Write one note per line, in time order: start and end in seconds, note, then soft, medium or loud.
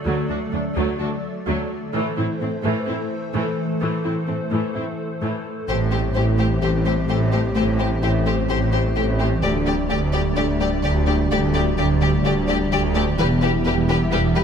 0.00 1.94 F#3 medium
0.00 1.94 A3 medium
0.00 1.94 A4 medium
0.00 1.94 D5 medium
0.06 0.14 D2 medium
0.06 0.20 D3 medium
0.06 0.28 F#3 medium
0.06 0.28 A3 medium
0.29 0.38 D2 soft
0.29 0.44 A3 medium
0.29 0.37 D4 soft
0.29 0.37 F#4 soft
0.53 0.61 D2 soft
0.53 0.61 A3 soft
0.53 0.61 D4 soft
0.53 0.67 D4 medium
0.76 0.85 D2 medium
0.76 0.91 D3 medium
0.76 0.98 F#3 medium
0.76 0.98 A3 medium
1.00 1.09 D2 soft
1.00 1.14 A3 medium
1.00 1.08 D4 soft
1.00 1.08 F#4 soft
1.47 1.56 D2 medium
1.47 1.61 D3 medium
1.47 1.68 F#3 medium
1.47 1.68 A3 medium
1.94 2.02 A2 medium
1.94 2.16 E3 medium
1.94 5.68 E3 medium
1.94 2.08 A3 medium
1.94 2.16 A3 medium
1.94 5.65 A3 medium
1.94 5.65 A4 medium
1.94 5.68 C5 medium
2.17 2.26 A2 soft
2.17 2.25 C4 soft
2.17 2.26 E4 soft
2.17 2.31 E4 medium
2.41 2.49 A2 soft
2.41 2.49 A3 soft
2.41 2.49 C4 soft
2.41 2.55 A4 medium
2.64 2.72 A2 medium
2.64 2.86 E3 medium
2.64 2.78 A3 medium
2.64 2.86 A3 medium
2.87 2.96 A2 soft
2.87 2.95 C4 soft
2.87 2.96 E4 soft
2.87 3.02 E4 medium
3.34 3.43 A2 medium
3.34 3.56 E3 medium
3.34 3.56 A3 medium
3.34 3.49 A3 medium
3.81 3.90 A2 medium
3.81 4.03 E3 soft
3.81 3.95 A3 medium
3.81 4.03 A3 medium
4.04 4.13 A2 soft
4.04 4.13 C4 soft
4.04 4.12 E4 soft
4.04 4.19 E4 medium
4.28 4.37 A2 soft
4.28 4.36 A3 soft
4.28 4.36 C4 soft
4.28 4.42 A4 medium
4.51 4.60 A2 medium
4.51 4.73 E3 soft
4.51 4.73 A3 soft
4.51 4.66 A3 medium
4.75 4.84 A2 soft
4.75 4.83 C4 soft
4.75 4.89 E4 medium
4.75 4.83 E4 soft
5.22 5.30 A2 medium
5.22 5.43 E3 soft
5.22 5.43 A3 soft
5.22 5.36 A3 medium
5.68 9.45 A1 medium
5.68 6.10 A1 medium
5.68 6.10 A2 medium
5.68 9.40 E3 medium
5.68 9.40 G3 soft
5.68 5.83 A3 medium
5.68 5.77 A3 soft
5.68 9.40 A3 medium
5.68 9.40 C4 medium
5.68 5.77 G4 soft
5.68 9.40 G4 medium
5.68 5.77 C5 medium
5.68 9.40 C5 medium
5.92 6.00 A3 soft
5.92 6.06 G4 medium
5.92 6.00 G4 soft
5.92 6.00 C5 soft
6.15 6.57 A1 medium
6.15 6.57 A2 medium
6.15 6.23 A3 soft
6.15 6.30 E4 medium
6.15 6.24 G4 soft
6.15 6.23 C5 soft
6.38 6.47 A3 soft
6.38 6.53 A3 medium
6.38 6.47 G4 soft
6.38 6.46 C5 soft
6.62 7.04 A1 medium
6.62 7.04 A2 soft
6.62 6.70 A3 soft
6.62 6.76 G4 medium
6.62 6.70 G4 soft
6.62 6.70 C5 soft
6.85 6.94 A3 soft
6.85 7.00 C4 medium
6.85 6.94 G4 soft
6.85 6.93 C5 soft
7.09 7.51 A1 medium
7.09 7.51 A2 medium
7.09 7.23 A3 medium
7.09 7.17 A3 soft
7.09 7.17 G4 soft
7.09 7.17 C5 soft
7.32 7.40 A3 medium
7.32 7.47 G4 medium
7.32 7.41 G4 soft
7.32 7.41 C5 soft
7.55 7.98 A1 medium
7.55 7.97 A2 medium
7.55 7.64 A3 soft
7.55 7.70 A3 medium
7.55 7.64 G4 medium
7.55 7.63 C5 medium
7.79 7.87 A3 soft
7.79 7.93 G4 medium
7.79 7.87 G4 soft
7.79 7.87 C5 soft
8.03 8.44 A1 medium
8.03 8.44 A2 medium
8.03 8.11 A3 soft
8.03 8.17 E4 medium
8.03 8.11 G4 soft
8.03 8.11 C5 soft
8.26 8.34 A3 soft
8.26 8.40 A3 medium
8.26 8.34 G4 soft
8.26 8.35 C5 soft
8.49 8.91 A1 medium
8.49 8.92 A2 medium
8.49 8.57 A3 soft
8.49 8.58 G4 soft
8.49 8.64 G4 medium
8.49 8.57 C5 medium
8.73 8.81 A3 soft
8.73 8.87 C4 medium
8.73 8.81 G4 soft
8.73 8.81 C5 soft
8.96 9.38 A1 medium
8.96 9.38 A2 medium
8.96 9.05 A3 soft
8.96 9.11 A3 medium
8.96 9.04 G4 soft
8.96 9.04 C5 soft
9.20 9.28 A3 medium
9.20 9.28 G4 soft
9.20 9.34 G4 medium
9.20 9.28 C5 soft
9.43 13.20 D1 medium
9.43 9.85 D2 medium
9.43 9.57 D3 medium
9.43 13.02 G3 medium
9.43 13.18 G3 medium
9.43 9.51 A3 soft
9.43 13.15 A3 medium
9.43 13.02 D4 medium
9.43 9.51 G4 soft
9.43 13.15 G4 medium
9.43 9.51 D5 medium
9.43 13.19 D5 medium
9.66 9.74 A3 soft
9.66 9.81 D4 medium
9.66 9.74 G4 soft
9.66 9.74 D5 soft
9.89 10.32 D2 medium
9.89 9.98 A3 soft
9.89 10.04 A3 medium
9.89 9.97 G4 medium
9.89 9.98 D5 soft
10.13 10.28 D3 medium
10.13 10.21 A3 soft
10.13 10.21 G4 soft
10.13 10.21 D5 medium
10.36 10.78 D2 medium
10.36 10.79 D2 medium
10.36 10.45 A3 medium
10.36 10.51 D4 medium
10.36 10.45 G4 medium
10.36 10.45 D5 medium
10.60 10.75 G3 medium
10.60 10.68 A3 soft
10.60 10.68 G4 soft
10.60 10.69 D5 medium
10.84 11.25 D2 medium
10.84 11.26 D2 medium
10.84 10.98 D3 medium
10.84 10.92 A3 soft
10.84 10.92 G4 medium
10.84 10.92 D5 medium
11.07 11.16 A3 medium
11.07 11.22 D4 medium
11.07 11.15 G4 soft
11.07 11.15 D5 soft
11.31 11.72 D2 medium
11.31 11.73 D2 medium
11.31 11.45 D3 medium
11.31 11.39 A3 medium
11.31 11.39 G4 medium
11.31 11.39 D5 medium
11.54 11.63 A3 medium
11.54 11.68 D4 medium
11.54 11.63 G4 medium
11.54 11.62 D5 medium
11.78 12.19 D2 medium
11.78 12.20 D2 medium
11.78 11.86 A3 soft
11.78 11.92 A3 medium
11.78 11.86 G4 medium
11.78 11.86 D5 soft
12.01 12.16 D3 medium
12.01 12.09 A3 soft
12.01 12.10 G4 medium
12.01 12.09 D5 medium
12.25 12.66 D2 medium
12.25 12.33 A3 medium
12.25 12.39 D4 medium
12.25 12.33 G4 medium
12.25 12.33 D5 medium
12.48 12.63 G3 medium
12.48 12.56 A3 medium
12.48 12.57 G4 medium
12.48 12.56 D5 medium
12.71 13.13 D2 medium
12.71 12.86 D3 medium
12.71 12.79 A3 medium
12.71 12.81 G4 medium
12.71 12.80 D5 medium
12.95 13.03 A3 medium
12.95 13.09 D4 medium
12.95 13.04 G4 medium
12.95 13.03 D5 medium
13.18 13.60 E1 medium
13.18 14.44 E1 medium
13.18 13.60 E2 medium
13.18 13.33 E3 medium
13.18 13.26 G3 medium
13.18 14.44 G3 medium
13.18 14.44 B3 medium
13.18 14.44 E4 medium
13.18 13.27 G4 medium
13.18 14.44 G4 medium
13.18 13.27 B4 medium
13.18 14.44 E5 medium
13.41 13.50 G3 medium
13.41 13.57 E4 medium
13.41 13.51 G4 medium
13.41 13.49 B4 medium
13.65 14.07 E1 medium
13.65 14.07 E2 medium
13.65 13.73 G3 medium
13.65 13.80 B3 medium
13.65 13.74 G4 medium
13.65 13.73 B4 medium
13.88 14.03 E3 medium
13.88 13.96 G3 medium
13.88 13.98 G4 medium
13.88 13.97 B4 medium
14.11 14.44 E1 medium
14.11 14.44 E2 medium
14.11 14.19 G3 medium
14.11 14.27 E4 medium
14.11 14.20 G4 medium
14.11 14.21 B4 medium
14.35 14.43 G3 medium
14.35 14.44 G3 medium
14.35 14.44 G4 medium
14.35 14.44 B4 medium